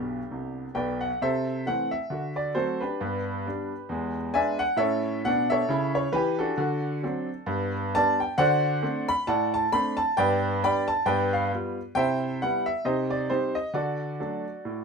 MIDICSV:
0, 0, Header, 1, 2, 480
1, 0, Start_track
1, 0, Key_signature, 1, "major"
1, 0, Tempo, 447427
1, 1295, Time_signature, 4, 2, 24, 8
1, 15924, End_track
2, 0, Start_track
2, 0, Title_t, "Grand piano"
2, 0, Program_c, 0, 0
2, 0, Note_on_c, 0, 35, 48
2, 0, Note_on_c, 0, 47, 57
2, 0, Note_on_c, 0, 59, 46
2, 0, Note_on_c, 0, 62, 46
2, 0, Note_on_c, 0, 67, 68
2, 206, Note_off_c, 0, 47, 0
2, 208, Note_off_c, 0, 35, 0
2, 335, Note_on_c, 0, 48, 53
2, 338, Note_on_c, 0, 36, 48
2, 695, Note_off_c, 0, 48, 0
2, 697, Note_off_c, 0, 36, 0
2, 775, Note_off_c, 0, 59, 0
2, 775, Note_off_c, 0, 62, 0
2, 801, Note_on_c, 0, 47, 60
2, 802, Note_on_c, 0, 35, 58
2, 803, Note_on_c, 0, 79, 77
2, 812, Note_off_c, 0, 67, 0
2, 814, Note_on_c, 0, 74, 56
2, 820, Note_on_c, 0, 71, 57
2, 1076, Note_off_c, 0, 74, 0
2, 1079, Note_off_c, 0, 71, 0
2, 1080, Note_on_c, 0, 78, 73
2, 1091, Note_off_c, 0, 79, 0
2, 1167, Note_off_c, 0, 35, 0
2, 1167, Note_off_c, 0, 47, 0
2, 1287, Note_off_c, 0, 78, 0
2, 1305, Note_on_c, 0, 48, 81
2, 1311, Note_on_c, 0, 76, 87
2, 1314, Note_on_c, 0, 72, 63
2, 1316, Note_on_c, 0, 69, 66
2, 1515, Control_c, 0, 64, 127
2, 1710, Note_off_c, 0, 48, 0
2, 1753, Note_off_c, 0, 72, 0
2, 1754, Note_off_c, 0, 69, 0
2, 1784, Note_off_c, 0, 76, 0
2, 1785, Note_on_c, 0, 52, 52
2, 1789, Control_c, 0, 64, 0
2, 1791, Note_on_c, 0, 78, 85
2, 1794, Note_on_c, 0, 57, 46
2, 1801, Note_on_c, 0, 60, 45
2, 2047, Note_off_c, 0, 52, 0
2, 2053, Note_on_c, 0, 76, 79
2, 2054, Note_off_c, 0, 57, 0
2, 2059, Note_off_c, 0, 60, 0
2, 2066, Note_off_c, 0, 78, 0
2, 2253, Note_on_c, 0, 50, 72
2, 2272, Note_on_c, 0, 66, 46
2, 2486, Control_c, 0, 64, 127
2, 2533, Note_off_c, 0, 66, 0
2, 2533, Note_on_c, 0, 74, 73
2, 2537, Note_off_c, 0, 76, 0
2, 2664, Note_off_c, 0, 50, 0
2, 2732, Note_on_c, 0, 72, 84
2, 2734, Note_on_c, 0, 54, 50
2, 2735, Note_off_c, 0, 74, 0
2, 2738, Note_on_c, 0, 57, 52
2, 2740, Note_on_c, 0, 60, 52
2, 2745, Note_on_c, 0, 66, 60
2, 2745, Note_on_c, 0, 69, 64
2, 2746, Control_c, 0, 64, 0
2, 3000, Note_off_c, 0, 54, 0
2, 3002, Note_off_c, 0, 57, 0
2, 3004, Note_off_c, 0, 60, 0
2, 3004, Note_off_c, 0, 66, 0
2, 3004, Note_off_c, 0, 69, 0
2, 3008, Note_on_c, 0, 71, 73
2, 3017, Note_off_c, 0, 72, 0
2, 3023, Note_on_c, 0, 62, 54
2, 3030, Note_on_c, 0, 67, 55
2, 3226, Note_on_c, 0, 43, 79
2, 3249, Note_on_c, 0, 59, 56
2, 3398, Control_c, 0, 64, 127
2, 3505, Note_off_c, 0, 59, 0
2, 3632, Note_off_c, 0, 43, 0
2, 3709, Note_off_c, 0, 62, 0
2, 3714, Note_on_c, 0, 55, 44
2, 3716, Control_c, 0, 64, 0
2, 3720, Note_on_c, 0, 59, 49
2, 3726, Note_on_c, 0, 62, 53
2, 3974, Note_off_c, 0, 55, 0
2, 3978, Note_off_c, 0, 59, 0
2, 3983, Note_off_c, 0, 62, 0
2, 4176, Note_on_c, 0, 40, 78
2, 4202, Note_on_c, 0, 56, 57
2, 4388, Control_c, 0, 64, 127
2, 4424, Note_off_c, 0, 67, 0
2, 4456, Note_off_c, 0, 71, 0
2, 4460, Note_off_c, 0, 56, 0
2, 4586, Note_off_c, 0, 40, 0
2, 4653, Note_on_c, 0, 80, 91
2, 4658, Note_on_c, 0, 56, 54
2, 4659, Note_on_c, 0, 62, 63
2, 4660, Note_on_c, 0, 59, 46
2, 4662, Note_on_c, 0, 74, 72
2, 4668, Control_c, 0, 64, 0
2, 4668, Note_on_c, 0, 76, 78
2, 4923, Note_off_c, 0, 56, 0
2, 4923, Note_off_c, 0, 74, 0
2, 4924, Note_off_c, 0, 62, 0
2, 4925, Note_off_c, 0, 59, 0
2, 4925, Note_on_c, 0, 78, 101
2, 4926, Note_off_c, 0, 76, 0
2, 4939, Note_off_c, 0, 80, 0
2, 5112, Note_on_c, 0, 45, 80
2, 5121, Note_on_c, 0, 76, 95
2, 5129, Note_on_c, 0, 69, 72
2, 5130, Note_on_c, 0, 73, 67
2, 5132, Note_off_c, 0, 78, 0
2, 5141, Note_on_c, 0, 61, 76
2, 5352, Control_c, 0, 64, 127
2, 5508, Note_off_c, 0, 45, 0
2, 5525, Note_off_c, 0, 61, 0
2, 5581, Note_off_c, 0, 69, 0
2, 5582, Note_off_c, 0, 73, 0
2, 5611, Note_off_c, 0, 76, 0
2, 5630, Note_on_c, 0, 47, 82
2, 5631, Note_on_c, 0, 78, 97
2, 5636, Control_c, 0, 64, 0
2, 5657, Note_on_c, 0, 62, 81
2, 5899, Note_on_c, 0, 76, 91
2, 5908, Note_off_c, 0, 78, 0
2, 5915, Note_on_c, 0, 69, 70
2, 5921, Note_on_c, 0, 73, 78
2, 6010, Note_off_c, 0, 47, 0
2, 6027, Note_off_c, 0, 62, 0
2, 6100, Note_on_c, 0, 49, 80
2, 6118, Note_on_c, 0, 64, 77
2, 6356, Note_off_c, 0, 69, 0
2, 6359, Note_off_c, 0, 73, 0
2, 6380, Note_off_c, 0, 76, 0
2, 6383, Note_on_c, 0, 73, 89
2, 6484, Note_off_c, 0, 49, 0
2, 6495, Note_off_c, 0, 64, 0
2, 6570, Note_on_c, 0, 52, 94
2, 6572, Note_on_c, 0, 71, 101
2, 6581, Note_off_c, 0, 73, 0
2, 6599, Note_on_c, 0, 67, 90
2, 6850, Note_on_c, 0, 69, 83
2, 6858, Note_off_c, 0, 71, 0
2, 6863, Note_on_c, 0, 66, 69
2, 6866, Note_on_c, 0, 62, 62
2, 6958, Note_off_c, 0, 52, 0
2, 6976, Note_off_c, 0, 67, 0
2, 7053, Note_on_c, 0, 50, 94
2, 7061, Note_off_c, 0, 66, 0
2, 7077, Note_on_c, 0, 66, 67
2, 7255, Control_c, 0, 64, 127
2, 7336, Note_off_c, 0, 66, 0
2, 7464, Note_off_c, 0, 50, 0
2, 7534, Note_off_c, 0, 62, 0
2, 7544, Note_on_c, 0, 54, 51
2, 7548, Control_c, 0, 64, 0
2, 7550, Note_on_c, 0, 62, 56
2, 7552, Note_on_c, 0, 60, 60
2, 7807, Note_off_c, 0, 54, 0
2, 7811, Note_off_c, 0, 62, 0
2, 7813, Note_off_c, 0, 60, 0
2, 8008, Note_on_c, 0, 43, 91
2, 8029, Note_on_c, 0, 59, 60
2, 8242, Control_c, 0, 64, 127
2, 8290, Note_off_c, 0, 59, 0
2, 8295, Note_off_c, 0, 69, 0
2, 8420, Note_off_c, 0, 43, 0
2, 8515, Control_c, 0, 64, 0
2, 8527, Note_on_c, 0, 81, 127
2, 8530, Note_on_c, 0, 55, 59
2, 8533, Note_on_c, 0, 62, 60
2, 8538, Note_on_c, 0, 59, 68
2, 8542, Note_on_c, 0, 74, 93
2, 8784, Note_off_c, 0, 74, 0
2, 8786, Note_off_c, 0, 55, 0
2, 8788, Note_off_c, 0, 62, 0
2, 8791, Note_off_c, 0, 59, 0
2, 8794, Note_off_c, 0, 81, 0
2, 8799, Note_on_c, 0, 79, 81
2, 8987, Note_on_c, 0, 78, 114
2, 8988, Note_off_c, 0, 79, 0
2, 8989, Note_on_c, 0, 50, 110
2, 8996, Note_on_c, 0, 72, 77
2, 9002, Note_on_c, 0, 74, 80
2, 9011, Note_on_c, 0, 66, 66
2, 9173, Control_c, 0, 64, 127
2, 9266, Note_off_c, 0, 66, 0
2, 9392, Note_off_c, 0, 50, 0
2, 9468, Note_on_c, 0, 57, 61
2, 9468, Note_on_c, 0, 62, 62
2, 9469, Note_on_c, 0, 60, 59
2, 9470, Control_c, 0, 64, 0
2, 9705, Note_off_c, 0, 72, 0
2, 9708, Note_off_c, 0, 74, 0
2, 9729, Note_off_c, 0, 57, 0
2, 9729, Note_off_c, 0, 62, 0
2, 9730, Note_off_c, 0, 60, 0
2, 9744, Note_off_c, 0, 78, 0
2, 9746, Note_on_c, 0, 83, 117
2, 9941, Note_off_c, 0, 83, 0
2, 9948, Note_on_c, 0, 81, 99
2, 9952, Note_on_c, 0, 45, 86
2, 9962, Note_on_c, 0, 78, 73
2, 9963, Note_on_c, 0, 74, 72
2, 10212, Note_off_c, 0, 78, 0
2, 10213, Note_off_c, 0, 74, 0
2, 10217, Note_off_c, 0, 81, 0
2, 10233, Note_on_c, 0, 81, 102
2, 10353, Note_off_c, 0, 45, 0
2, 10424, Note_off_c, 0, 81, 0
2, 10433, Note_on_c, 0, 57, 64
2, 10433, Note_on_c, 0, 83, 119
2, 10439, Note_on_c, 0, 60, 61
2, 10447, Note_on_c, 0, 62, 62
2, 10692, Note_off_c, 0, 57, 0
2, 10693, Note_on_c, 0, 81, 106
2, 10696, Note_off_c, 0, 60, 0
2, 10702, Note_off_c, 0, 62, 0
2, 10706, Note_off_c, 0, 83, 0
2, 10894, Note_off_c, 0, 81, 0
2, 10911, Note_on_c, 0, 79, 110
2, 10920, Note_on_c, 0, 43, 99
2, 10922, Note_on_c, 0, 74, 83
2, 10927, Note_on_c, 0, 71, 79
2, 10936, Note_on_c, 0, 59, 60
2, 11113, Control_c, 0, 64, 127
2, 11189, Note_off_c, 0, 59, 0
2, 11317, Note_off_c, 0, 43, 0
2, 11356, Note_off_c, 0, 74, 0
2, 11359, Note_off_c, 0, 71, 0
2, 11383, Note_off_c, 0, 79, 0
2, 11387, Control_c, 0, 64, 0
2, 11410, Note_on_c, 0, 55, 57
2, 11411, Note_on_c, 0, 59, 52
2, 11414, Note_on_c, 0, 83, 108
2, 11416, Note_on_c, 0, 62, 66
2, 11416, Note_on_c, 0, 79, 83
2, 11423, Note_on_c, 0, 74, 89
2, 11658, Note_off_c, 0, 79, 0
2, 11663, Note_off_c, 0, 74, 0
2, 11664, Note_off_c, 0, 55, 0
2, 11665, Note_off_c, 0, 59, 0
2, 11668, Note_on_c, 0, 81, 105
2, 11669, Note_off_c, 0, 62, 0
2, 11676, Note_off_c, 0, 83, 0
2, 11861, Note_off_c, 0, 81, 0
2, 11862, Note_on_c, 0, 43, 95
2, 11865, Note_on_c, 0, 79, 102
2, 11874, Note_on_c, 0, 71, 87
2, 11879, Note_on_c, 0, 74, 74
2, 11885, Note_on_c, 0, 59, 61
2, 12086, Control_c, 0, 64, 127
2, 12127, Note_off_c, 0, 71, 0
2, 12130, Note_off_c, 0, 74, 0
2, 12141, Note_off_c, 0, 59, 0
2, 12141, Note_off_c, 0, 79, 0
2, 12155, Note_on_c, 0, 77, 78
2, 12266, Note_off_c, 0, 43, 0
2, 12344, Note_off_c, 0, 77, 0
2, 12344, Control_c, 0, 64, 0
2, 12366, Note_on_c, 0, 55, 59
2, 12377, Note_on_c, 0, 59, 51
2, 12385, Note_on_c, 0, 65, 58
2, 12621, Note_off_c, 0, 55, 0
2, 12629, Note_off_c, 0, 59, 0
2, 12635, Note_off_c, 0, 65, 0
2, 12820, Note_on_c, 0, 79, 105
2, 12821, Note_on_c, 0, 48, 91
2, 12837, Note_on_c, 0, 72, 76
2, 12844, Note_on_c, 0, 76, 79
2, 12854, Note_on_c, 0, 64, 57
2, 13026, Control_c, 0, 64, 127
2, 13107, Note_off_c, 0, 64, 0
2, 13226, Note_off_c, 0, 48, 0
2, 13272, Note_off_c, 0, 72, 0
2, 13276, Note_off_c, 0, 76, 0
2, 13297, Note_off_c, 0, 79, 0
2, 13306, Control_c, 0, 64, 0
2, 13325, Note_on_c, 0, 78, 89
2, 13326, Note_on_c, 0, 55, 55
2, 13331, Note_on_c, 0, 64, 53
2, 13332, Note_on_c, 0, 59, 52
2, 13581, Note_off_c, 0, 55, 0
2, 13581, Note_on_c, 0, 76, 84
2, 13584, Note_off_c, 0, 64, 0
2, 13585, Note_off_c, 0, 59, 0
2, 13590, Note_off_c, 0, 78, 0
2, 13776, Note_off_c, 0, 76, 0
2, 13783, Note_on_c, 0, 48, 84
2, 13788, Note_on_c, 0, 75, 81
2, 13791, Note_on_c, 0, 72, 64
2, 13795, Note_on_c, 0, 67, 63
2, 13806, Note_on_c, 0, 63, 55
2, 13955, Control_c, 0, 64, 127
2, 14044, Note_off_c, 0, 72, 0
2, 14046, Note_off_c, 0, 67, 0
2, 14058, Note_on_c, 0, 74, 84
2, 14061, Note_off_c, 0, 63, 0
2, 14062, Note_off_c, 0, 75, 0
2, 14187, Note_off_c, 0, 48, 0
2, 14255, Note_off_c, 0, 74, 0
2, 14265, Note_on_c, 0, 55, 41
2, 14265, Note_on_c, 0, 72, 81
2, 14266, Control_c, 0, 64, 0
2, 14269, Note_on_c, 0, 60, 48
2, 14273, Note_on_c, 0, 63, 59
2, 14278, Note_on_c, 0, 67, 56
2, 14525, Note_off_c, 0, 55, 0
2, 14526, Note_off_c, 0, 63, 0
2, 14528, Note_off_c, 0, 67, 0
2, 14529, Note_off_c, 0, 60, 0
2, 14538, Note_on_c, 0, 75, 87
2, 14540, Note_off_c, 0, 72, 0
2, 14734, Note_off_c, 0, 75, 0
2, 14735, Note_on_c, 0, 50, 78
2, 14744, Note_on_c, 0, 74, 78
2, 14751, Note_on_c, 0, 66, 63
2, 14755, Note_on_c, 0, 69, 59
2, 14955, Control_c, 0, 64, 127
2, 15142, Note_off_c, 0, 50, 0
2, 15223, Control_c, 0, 64, 0
2, 15233, Note_on_c, 0, 54, 43
2, 15233, Note_on_c, 0, 62, 49
2, 15237, Note_on_c, 0, 57, 46
2, 15492, Note_off_c, 0, 54, 0
2, 15492, Note_off_c, 0, 62, 0
2, 15494, Note_off_c, 0, 57, 0
2, 15717, Note_on_c, 0, 45, 61
2, 15924, Note_off_c, 0, 45, 0
2, 15924, Note_off_c, 0, 66, 0
2, 15924, Note_off_c, 0, 69, 0
2, 15924, Note_off_c, 0, 74, 0
2, 15924, End_track
0, 0, End_of_file